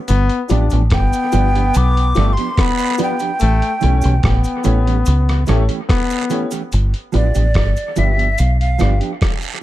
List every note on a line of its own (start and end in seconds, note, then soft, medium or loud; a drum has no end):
0.08 0.28 G1 loud
0.08 0.41 B3 loud
0.08 closed hi-hat loud
0.08 cabasa medium
0.29 closed hi-hat medium
0.49 0.70 A1 loud
0.49 0.63 F3 medium
0.49 0.64 B3 medium
0.49 0.83 D4 medium
0.49 0.64 D4 medium
0.49 0.66 F4 medium
0.49 0.66 G4 medium
0.49 0.64 G4 medium
0.49 0.66 B4 medium
0.49 0.66 D5 loud
0.49 closed hi-hat medium
0.49 cabasa medium
0.70 0.90 A1 medium
0.70 0.82 F3 medium
0.70 0.82 B3 medium
0.70 0.81 D4 medium
0.70 0.81 G4 medium
0.70 closed hi-hat medium
0.70 cabasa medium
0.90 1.11 G1 medium
0.90 2.12 B3 loud
0.90 1.78 G5 loud
0.90 kick loud
0.90 cross-stick loud
0.90 closed hi-hat medium
1.13 closed hi-hat medium
1.13 cabasa medium
1.32 1.71 G1 medium
1.32 1.46 F3 medium
1.32 1.46 B3 medium
1.32 1.47 D4 medium
1.32 1.48 F4 medium
1.32 1.49 G4 medium
1.32 1.47 G4 medium
1.32 1.49 B4 medium
1.32 1.49 D5 loud
1.32 closed hi-hat medium
1.32 cabasa medium
1.54 1.65 F3 medium
1.54 1.65 B3 medium
1.54 1.65 D4 medium
1.54 1.64 G4 medium
1.54 1.62 B4 soft
1.54 1.62 D5 soft
1.54 closed hi-hat medium
1.74 2.12 B1 loud
1.74 2.35 D6 loud
1.74 closed hi-hat loud
1.74 cabasa loud
1.97 closed hi-hat medium
2.15 2.36 G1 medium
2.15 2.29 F3 medium
2.15 2.33 A3 loud
2.15 2.30 B3 medium
2.15 2.30 D4 medium
2.15 2.31 F4 loud
2.15 2.32 G4 medium
2.15 2.30 G4 medium
2.15 2.32 B4 medium
2.15 2.32 D5 loud
2.15 cross-stick medium
2.15 closed hi-hat medium
2.15 cabasa soft
2.33 2.63 C6 loud
2.37 2.48 F3 medium
2.37 2.48 B3 medium
2.37 2.48 D4 medium
2.37 2.47 G4 medium
2.37 closed hi-hat medium
2.57 3.16 B3 loud
2.57 3.01 B5 loud
2.57 kick loud
2.57 cross-stick loud
2.57 closed hi-hat loud
2.57 long guiro medium
2.78 2.87 B4 soft
2.78 2.87 D5 soft
2.78 closed hi-hat medium
2.78 cabasa medium
2.98 3.12 F3 medium
2.98 3.13 B3 medium
2.98 3.13 D4 medium
2.98 3.14 F4 medium
2.98 3.14 G4 medium
2.98 3.13 G4 medium
2.98 3.15 B4 medium
2.98 3.15 D5 loud
2.98 closed hi-hat medium
2.98 cabasa medium
3.03 4.63 G5 loud
3.19 3.31 F3 medium
3.19 3.30 B3 medium
3.19 3.30 D4 medium
3.19 3.30 G4 medium
3.19 closed hi-hat medium
3.19 cabasa medium
3.39 3.61 A1 loud
3.39 3.74 A3 loud
3.39 closed hi-hat loud
3.39 cabasa medium
3.62 closed hi-hat medium
3.81 4.02 B1 medium
3.81 3.94 E3 medium
3.81 3.95 A3 medium
3.81 4.15 C#4 medium
3.81 3.95 C#4 medium
3.81 3.98 E4 loud
3.81 3.98 G4 medium
3.81 3.95 G4 medium
3.81 3.98 A4 medium
3.81 3.98 C#5 loud
3.81 closed hi-hat medium
3.81 cabasa medium
4.01 4.22 B1 loud
4.01 4.14 E3 soft
4.01 4.13 A3 medium
4.01 4.13 C#4 medium
4.01 4.13 G4 medium
4.01 closed hi-hat medium
4.01 cabasa medium
4.22 4.43 A1 loud
4.22 5.43 B3 loud
4.22 kick loud
4.22 cross-stick loud
4.22 closed hi-hat medium
4.44 closed hi-hat medium
4.44 cabasa medium
4.64 5.03 A1 medium
4.64 4.78 E3 medium
4.64 4.78 A3 medium
4.64 4.78 C#4 medium
4.64 4.80 E4 medium
4.64 4.80 G4 medium
4.64 4.79 G4 medium
4.64 4.80 A4 medium
4.64 4.81 C#5 loud
4.64 closed hi-hat medium
4.64 cabasa medium
4.86 4.97 E3 medium
4.86 4.96 A3 medium
4.86 4.96 C#4 medium
4.86 4.96 G4 medium
4.86 closed hi-hat medium
5.06 5.44 C#2 medium
5.06 closed hi-hat medium
5.06 cabasa loud
5.29 cross-stick medium
5.29 closed hi-hat medium
5.46 5.68 A1 medium
5.46 5.61 E3 medium
5.46 5.65 A3 loud
5.46 5.61 A3 medium
5.46 5.61 C#4 medium
5.46 5.63 E4 medium
5.46 5.63 G4 medium
5.46 5.61 G4 medium
5.46 5.64 A4 medium
5.46 5.64 C#5 loud
5.46 cross-stick medium
5.46 closed hi-hat medium
5.46 cabasa soft
5.68 5.79 E3 medium
5.68 5.79 A3 medium
5.68 5.79 C#4 medium
5.68 5.78 G4 medium
5.68 closed hi-hat medium
5.88 6.48 B3 loud
5.88 kick loud
5.88 cross-stick loud
5.88 closed hi-hat medium
5.88 long guiro medium
6.10 6.19 A4 soft
6.10 6.19 C#5 soft
6.10 closed hi-hat medium
6.10 cabasa medium
6.30 6.43 E3 medium
6.30 6.44 A3 medium
6.30 6.44 C#4 medium
6.30 6.46 E4 medium
6.30 6.47 G4 medium
6.30 6.44 G4 medium
6.30 6.47 A4 medium
6.30 6.47 C#5 loud
6.30 closed hi-hat medium
6.30 cabasa medium
6.51 6.62 E3 medium
6.51 6.62 A3 medium
6.51 6.62 C#4 medium
6.51 6.61 G4 medium
6.51 closed hi-hat medium
6.51 cabasa medium
6.72 6.92 G1 loud
6.72 closed hi-hat medium
6.72 cabasa medium
6.94 closed hi-hat soft
7.12 7.34 A1 medium
7.12 7.26 F3 medium
7.12 7.27 B3 medium
7.12 7.27 D4 medium
7.12 7.30 F4 medium
7.12 7.27 G4 medium
7.12 7.30 G4 medium
7.12 7.30 B4 medium
7.12 7.30 D5 loud
7.12 8.00 D5 loud
7.12 closed hi-hat medium
7.12 cabasa soft
7.34 7.54 A1 medium
7.34 7.45 F3 soft
7.34 7.45 B3 medium
7.34 7.45 D4 medium
7.34 7.44 G4 medium
7.34 closed hi-hat medium
7.34 cabasa medium
7.54 7.75 G1 medium
7.54 kick loud
7.54 cross-stick loud
7.54 closed hi-hat medium
7.76 closed hi-hat soft
7.76 cabasa medium
7.96 8.35 G1 medium
7.96 8.10 F3 medium
7.96 8.10 B3 medium
7.96 8.10 D4 medium
7.96 8.13 F4 medium
7.96 8.13 G4 medium
7.96 8.11 G4 medium
7.96 8.13 B4 medium
7.96 8.14 D5 medium
7.96 8.41 E5 loud
7.96 closed hi-hat medium
7.96 cabasa medium
8.16 8.28 F3 medium
8.16 8.28 B3 medium
8.16 8.27 D4 medium
8.16 8.27 G4 medium
8.16 8.27 B4 soft
8.16 8.27 D5 soft
8.16 closed hi-hat medium
8.38 8.77 B1 medium
8.38 8.59 F5 loud
8.38 closed hi-hat medium
8.38 cabasa medium
8.60 8.99 F5 medium
8.60 closed hi-hat medium
8.79 9.00 G1 medium
8.79 8.92 F3 medium
8.79 8.93 B3 medium
8.79 8.93 D4 medium
8.79 8.96 F4 medium
8.79 8.93 G4 medium
8.79 8.96 G4 medium
8.79 8.96 B4 medium
8.79 8.97 D5 loud
8.79 cross-stick medium
8.79 closed hi-hat medium
8.79 cabasa soft
9.00 9.11 F3 medium
9.00 9.11 B3 medium
9.00 9.11 D4 medium
9.00 9.10 G4 medium
9.00 closed hi-hat medium
9.21 kick loud
9.21 cross-stick loud
9.21 closed hi-hat medium
9.21 long guiro medium
9.42 closed hi-hat medium
9.42 cabasa medium